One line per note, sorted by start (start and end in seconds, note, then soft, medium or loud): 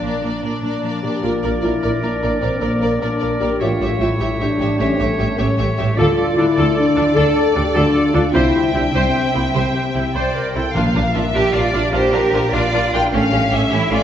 0.00 0.22 A#1 soft
0.00 1.21 A#2 soft
0.00 0.11 A#2 soft
0.00 0.21 F3 soft
0.00 0.41 A#3 soft
0.00 0.61 D4 soft
0.00 0.22 D4 soft
0.00 0.21 A#4 soft
0.06 0.23 D5 soft
0.22 0.31 A#2 soft
0.22 0.81 F3 soft
0.22 0.41 D4 soft
0.22 0.42 A#4 soft
0.22 0.44 D5 soft
0.42 0.51 A#2 soft
0.42 1.01 A#3 soft
0.42 0.61 D4 soft
0.42 0.61 A#4 soft
0.42 0.63 D5 soft
0.62 0.70 A#2 soft
0.62 0.81 D4 soft
0.62 1.61 D4 soft
0.62 1.01 D4 medium
0.62 0.81 A#4 soft
0.62 0.84 D5 soft
0.82 0.91 A#2 soft
0.82 3.62 F3 soft
0.82 1.03 D4 soft
0.82 1.02 A#4 soft
0.82 1.03 D5 soft
1.02 1.11 A#2 soft
1.02 1.41 A#3 soft
1.02 1.24 D4 soft
1.02 1.23 G4 medium
1.02 1.22 A#4 soft
1.02 1.22 D5 soft
1.23 1.32 A#1 soft
1.23 2.40 A#2 soft
1.23 1.32 A#2 soft
1.23 1.64 F4 medium
1.23 1.31 A#4 soft
1.23 2.98 A#4 soft
1.23 1.32 A#4 soft
1.23 1.31 D5 soft
1.23 2.98 D5 soft
1.42 1.52 A#1 soft
1.42 1.52 A#2 soft
1.42 2.60 A#3 soft
1.42 1.52 A#4 soft
1.42 1.51 D5 soft
1.62 1.72 A#1 soft
1.62 1.71 A#2 soft
1.62 2.80 D4 soft
1.62 2.03 E4 medium
1.62 1.71 A#4 soft
1.62 1.72 A#4 soft
1.62 1.70 D5 soft
1.82 1.92 A#1 soft
1.82 1.91 A#2 soft
1.82 1.91 A#4 soft
1.82 2.21 D5 soft
1.82 1.91 D5 soft
2.02 2.11 A#1 soft
2.02 2.11 A#2 soft
2.02 2.42 D4 medium
2.02 3.19 A#4 soft
2.02 2.11 A#4 soft
2.02 2.12 A#4 soft
2.02 2.11 D5 soft
2.22 2.31 A#1 soft
2.22 2.31 A#2 soft
2.22 2.30 A#4 soft
2.22 2.32 A#4 soft
2.22 2.31 D5 soft
2.40 2.51 A#1 soft
2.40 3.62 A#2 soft
2.40 2.51 A#2 soft
2.40 2.62 C4 medium
2.40 2.50 A#4 soft
2.40 2.51 A#4 soft
2.40 2.50 D5 soft
2.59 2.70 A#1 soft
2.59 2.70 A#2 soft
2.59 3.00 A#3 medium
2.59 3.62 A#3 soft
2.59 2.69 A#4 soft
2.59 2.70 A#4 soft
2.59 2.70 D5 soft
2.82 2.90 A#1 soft
2.82 2.90 A#2 soft
2.82 3.63 D4 soft
2.82 2.90 A#4 soft
2.82 2.91 A#4 soft
2.82 2.91 D5 soft
3.00 3.10 A#1 soft
3.00 3.10 A#2 soft
3.00 3.41 D4 medium
3.00 3.62 A#4 soft
3.00 3.10 A#4 soft
3.00 3.59 D5 soft
3.00 3.10 D5 soft
3.20 3.29 A#1 soft
3.20 3.29 A#2 soft
3.20 3.28 A#4 soft
3.20 3.30 A#4 soft
3.20 3.28 D5 soft
3.41 3.49 A#1 soft
3.41 3.49 A#2 soft
3.41 3.60 G4 medium
3.41 3.49 A#4 soft
3.41 3.50 A#4 soft
3.41 3.49 D5 soft
3.59 3.69 A1 soft
3.59 4.78 A2 soft
3.59 3.69 A2 soft
3.59 4.01 F4 medium
3.59 4.78 G4 soft
3.59 3.69 G4 soft
3.59 4.76 C#5 soft
3.59 3.69 C#5 soft
3.59 3.69 E5 soft
3.79 3.88 A1 soft
3.79 3.88 A2 soft
3.79 4.98 G3 soft
3.79 3.89 G4 soft
3.79 3.90 C#5 soft
3.79 3.89 E5 soft
3.99 4.08 A1 soft
3.99 4.08 A2 soft
3.99 5.18 C#4 soft
3.99 4.41 E4 medium
3.99 4.09 G4 soft
3.99 4.08 C#5 soft
3.99 4.09 E5 soft
4.19 4.28 A1 soft
4.19 4.27 A2 medium
4.19 4.28 G4 soft
4.19 4.58 A4 soft
4.19 4.28 C#5 soft
4.19 4.28 E5 soft
4.39 4.48 A1 soft
4.39 4.47 A2 soft
4.39 4.79 D4 medium
4.39 5.57 G4 soft
4.39 4.48 G4 soft
4.39 4.48 C#5 soft
4.39 4.48 E5 soft
4.59 4.67 A1 soft
4.59 4.67 A2 soft
4.59 4.68 G4 soft
4.59 5.37 A4 soft
4.59 4.68 C#5 soft
4.59 4.68 E5 soft
4.78 4.88 A1 medium
4.78 4.87 A2 medium
4.78 5.99 A2 soft
4.78 4.99 C#4 medium
4.78 5.37 G4 medium
4.78 4.88 G4 medium
4.78 5.37 C#5 soft
4.78 4.88 C#5 soft
4.78 4.88 E5 soft
4.98 5.08 A1 medium
4.98 5.06 A2 medium
4.98 5.99 G3 soft
4.98 5.38 A3 medium
4.98 5.07 G4 soft
4.98 5.07 C#5 soft
4.98 5.08 E5 soft
5.19 5.27 A1 soft
5.19 5.27 A2 soft
5.19 5.99 C#4 soft
5.19 5.27 G4 soft
5.19 5.27 C#5 soft
5.19 5.27 E5 soft
5.38 5.47 A1 medium
5.38 5.47 A2 medium
5.38 5.59 C#4 medium
5.38 5.96 G4 soft
5.38 5.46 G4 soft
5.38 5.76 A4 soft
5.38 5.47 C#5 soft
5.38 5.96 C#5 medium
5.38 5.46 E5 soft
5.57 5.67 A1 medium
5.57 5.66 A2 medium
5.57 5.99 G4 soft
5.57 5.67 G4 soft
5.57 5.68 C#5 soft
5.57 5.65 E5 soft
5.78 5.87 A1 medium
5.78 5.86 A2 medium
5.78 5.86 G4 soft
5.78 6.36 A4 soft
5.78 5.88 C#5 medium
5.78 5.86 E5 medium
5.96 6.05 D3 medium
5.96 7.14 D3 medium
5.96 6.33 F4 medium
5.96 6.07 A4 medium
5.96 6.16 A4 medium
5.96 6.06 D5 medium
5.96 8.30 D5 medium
5.96 8.31 D5 medium
6.00 6.08 D2 medium
6.17 7.34 D4 soft
6.17 6.27 A4 soft
6.17 6.26 D5 medium
6.35 6.46 D2 medium
6.35 6.44 D3 soft
6.35 6.47 D4 soft
6.35 6.75 E4 medium
6.35 7.54 A4 medium
6.35 6.46 A4 soft
6.35 6.45 D5 soft
6.55 6.66 D2 medium
6.55 6.64 D3 medium
6.55 6.94 F4 medium
6.55 6.75 A4 medium
6.55 6.66 A4 medium
6.55 6.64 D5 medium
6.75 7.16 D4 medium
6.75 6.86 A4 medium
6.75 6.84 D5 medium
6.75 7.93 D5 medium
6.95 7.05 D2 medium
6.95 7.04 D3 medium
6.95 7.04 D4 medium
6.95 7.73 F4 soft
6.95 7.05 A4 medium
6.95 7.04 D5 medium
7.15 7.24 D2 medium
7.15 8.35 D3 medium
7.15 7.23 D3 medium
7.15 7.55 A4 medium
7.15 7.34 A4 medium
7.15 7.25 A4 medium
7.15 7.24 D5 medium
7.35 8.36 D4 soft
7.35 7.44 A4 medium
7.35 7.44 D5 medium
7.54 7.64 D2 medium
7.54 7.62 D3 soft
7.54 7.63 D4 soft
7.54 7.75 G4 medium
7.54 7.64 A4 medium
7.54 7.63 D5 soft
7.73 7.84 D2 medium
7.73 7.83 D3 medium
7.73 8.15 D4 medium
7.73 8.12 F4 medium
7.73 7.93 A4 medium
7.73 7.83 A4 medium
7.73 7.82 D5 medium
7.93 8.04 A4 medium
7.93 8.02 D5 soft
8.12 8.23 D2 medium
8.12 8.22 D3 medium
8.12 8.22 D4 medium
8.12 8.35 F4 soft
8.12 8.34 F4 medium
8.12 8.23 A4 medium
8.12 8.22 D5 medium
8.33 8.42 C2 medium
8.33 8.41 C3 medium
8.33 9.53 C3 medium
8.33 8.73 E4 medium
8.33 8.44 G4 medium
8.33 8.43 C5 medium
8.33 8.53 C5 medium
8.33 10.11 E5 medium
8.33 10.55 G5 medium
8.53 9.73 G3 soft
8.53 8.63 G4 soft
8.53 8.62 C5 medium
8.73 8.82 C2 soft
8.73 8.81 C3 soft
8.73 8.94 D4 medium
8.73 9.93 E4 soft
8.73 8.82 E4 soft
8.73 8.85 G4 soft
8.73 8.83 C5 soft
8.93 9.02 C2 medium
8.93 9.01 C3 medium
8.93 9.33 C4 medium
8.93 9.04 G4 soft
8.93 9.32 C5 soft
8.93 9.04 C5 soft
8.93 9.13 C5 medium
9.14 10.34 G4 soft
9.14 9.23 G4 soft
9.14 9.24 C5 soft
9.33 9.43 C2 soft
9.33 9.42 C3 soft
9.33 9.42 A#3 medium
9.33 9.42 E4 soft
9.33 9.43 G4 soft
9.33 10.13 C5 soft
9.33 9.44 C5 soft
9.54 9.62 C2 soft
9.54 10.76 C3 soft
9.54 9.63 C3 medium
9.54 10.14 C4 medium
9.54 9.63 G4 soft
9.54 9.73 C5 soft
9.54 9.64 C5 soft
9.74 10.76 G3 soft
9.74 9.84 G4 soft
9.74 9.84 C5 soft
9.95 10.03 C2 soft
9.95 10.03 C3 soft
9.95 10.76 E4 soft
9.95 10.03 E4 soft
9.95 10.04 G4 soft
9.95 10.04 C5 soft
10.14 10.22 C2 soft
10.14 10.23 C3 medium
10.14 10.54 C5 soft
10.14 10.24 C5 soft
10.14 10.34 C5 soft
10.14 10.37 C5 soft
10.14 10.52 D5 medium
10.35 10.77 G4 soft
10.35 10.57 A#4 soft
10.35 10.44 C5 soft
10.55 10.63 C2 soft
10.55 10.63 C3 soft
10.55 10.63 E4 soft
10.55 10.75 A4 soft
10.55 10.77 C5 soft
10.55 10.64 C5 soft
10.55 10.75 G5 medium
10.74 10.83 A#1 soft
10.74 11.30 A#2 medium
10.74 11.92 A#2 medium
10.74 10.83 D4 medium
10.74 10.83 F4 medium
10.74 10.82 A#4 soft
10.74 11.15 F5 medium
10.94 11.03 A#1 medium
10.94 12.12 A#3 soft
10.94 11.03 D4 soft
10.94 11.04 F4 soft
10.94 11.02 A#4 soft
11.14 11.23 A#1 medium
11.14 11.23 D4 soft
11.14 11.23 F4 soft
11.14 11.22 A#4 soft
11.14 11.52 D5 soft
11.14 11.54 E5 medium
11.34 11.42 A#1 medium
11.34 11.43 D4 soft
11.34 11.43 F4 soft
11.34 11.53 G4 medium
11.34 12.51 A#4 soft
11.34 11.42 A#4 soft
11.53 11.62 A#1 medium
11.53 11.61 D4 soft
11.53 11.61 F4 soft
11.53 11.74 F4 medium
11.53 11.63 A#4 soft
11.53 11.93 D5 medium
11.73 11.82 A#1 medium
11.73 11.81 D4 soft
11.73 12.91 D4 soft
11.73 11.93 D4 medium
11.73 11.82 F4 soft
11.73 11.82 A#4 soft
11.92 12.02 A#1 medium
11.92 13.14 A#2 medium
11.92 12.00 D4 medium
11.92 12.00 F4 medium
11.92 12.52 G4 medium
11.92 12.02 A#4 soft
11.92 12.13 C5 medium
12.12 12.22 A#1 medium
12.12 12.20 D4 soft
12.12 12.21 F4 soft
12.12 12.53 A#4 medium
12.12 12.23 A#4 soft
12.33 12.41 A#1 medium
12.33 12.41 D4 soft
12.33 12.41 F4 soft
12.33 12.43 A#4 medium
12.53 12.61 A#1 medium
12.53 12.61 D4 medium
12.53 12.61 F4 medium
12.53 13.13 F4 medium
12.53 13.14 A#4 medium
12.53 12.63 A#4 soft
12.53 12.93 D5 medium
12.73 12.81 A#1 medium
12.73 12.82 D4 soft
12.73 12.81 F4 soft
12.73 12.81 A#4 soft
12.73 13.14 D5 soft
12.92 13.01 A#1 medium
12.92 13.14 D4 soft
12.92 13.02 D4 soft
12.92 13.02 F4 soft
12.92 13.01 A#4 medium
12.92 13.01 G5 medium
13.13 13.21 A1 medium
13.13 14.03 A2 medium
13.13 13.21 A3 medium
13.13 13.71 C#4 medium
13.13 13.21 C#4 medium
13.13 13.21 G4 medium
13.13 13.52 F5 medium
13.32 13.40 A1 medium
13.32 14.03 G3 soft
13.32 13.40 A3 soft
13.32 13.40 C#4 soft
13.32 13.40 G4 medium
13.51 13.61 A1 medium
13.51 13.60 A3 medium
13.51 13.60 C#4 medium
13.51 13.59 G4 medium
13.51 14.03 A4 medium
13.51 13.92 E5 medium
13.70 13.80 A1 medium
13.70 13.80 A3 medium
13.70 13.79 C#4 medium
13.70 13.91 E4 medium
13.70 13.78 G4 medium
13.70 14.03 C#6 medium
13.91 13.99 A1 medium
13.91 13.99 A3 medium
13.91 13.99 C#4 medium
13.91 14.03 F4 medium
13.91 14.03 G4 medium
13.91 14.00 G4 medium
13.91 14.03 D5 medium